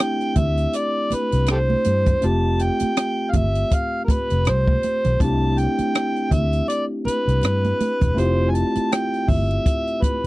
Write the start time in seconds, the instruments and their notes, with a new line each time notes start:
Already playing: tine electric piano A3 C4 D4 E4 G4, harmonica G5
0.00 cross-stick
0.21 closed hi-hat
0.36 fingered electric bass D2, harmonica E5, kick, closed hi-hat, high conga, low conga
0.57 closed hi-hat
0.73 harmonica D5, closed hi-hat
1.11 harmonica B4, muted fingered electric bass stroke, closed hi-hat, muted conga, high conga
1.32 fingered electric bass C2, closed hi-hat
1.46 cross-stick, closed hi-hat
1.51 harmonica G4 A4 C5
1.70 high conga
1.84 fingered electric bass G2, closed hi-hat, high conga
2.06 kick, closed hi-hat, low conga
2.22 fingered electric bass F1, tine electric piano A3 C4 F4 G4, harmonica A5, closed hi-hat, muted conga
2.59 harmonica G5, closed hi-hat
2.79 muted fingered electric bass stroke, closed hi-hat, high conga
2.97 cross-stick, closed hi-hat, muted conga
3.31 fingered electric bass G1, harmonica F5, kick, closed hi-hat, muted conga, high conga, low conga
3.37 harmonica E5
3.55 closed hi-hat
3.70 kick, closed hi-hat, muted conga
3.75 harmonica F5
4.05 harmonica A#4, muted fingered electric bass stroke, kick, high conga
4.09 harmonica B4, closed hi-hat
4.30 fingered electric bass F1, closed hi-hat
4.45 fingered electric bass C2, cross-stick, closed hi-hat
4.49 harmonica C5
4.67 kick, high conga
4.83 closed hi-hat, muted conga, high conga
5.05 fingered electric bass B1, closed hi-hat, low conga
5.20 fingered electric bass C2, tine electric piano A3 C4 D4 E4 G4, harmonica A5, kick, closed hi-hat, muted conga
5.58 harmonica G5, closed hi-hat, muted conga
5.78 muted fingered electric bass stroke, closed hi-hat, high conga
5.95 cross-stick, closed hi-hat
6.16 closed hi-hat
6.31 fingered electric bass D2, harmonica E5, kick, closed hi-hat, high conga, low conga
6.53 closed hi-hat
6.68 harmonica D5, closed hi-hat, muted conga
7.05 harmonica B4, muted fingered electric bass stroke, closed hi-hat, high conga
7.28 fingered electric bass C2, closed hi-hat
7.42 fingered electric bass G2, cross-stick, closed hi-hat, muted conga
7.64 closed hi-hat, high conga
7.80 closed hi-hat, muted conga, high conga
8.01 fingered electric bass E1, kick, closed hi-hat, low conga
8.15 fingered electric bass F1, tine electric piano A3 C4 E4 F4, closed hi-hat, muted conga
8.19 tine electric piano G4, harmonica C5
8.50 harmonica G#5
8.55 harmonica A5, closed hi-hat
8.75 muted fingered electric bass stroke, closed hi-hat, high conga
8.92 harmonica G5, cross-stick, closed hi-hat
9.14 closed hi-hat
9.28 fingered electric bass G1, harmonica E5, kick, open hi-hat, muted conga, high conga, low conga
9.51 closed hi-hat
9.66 kick, closed hi-hat
9.87 closed hi-hat
10.02 harmonica B4, muted fingered electric bass stroke, kick, closed hi-hat, high conga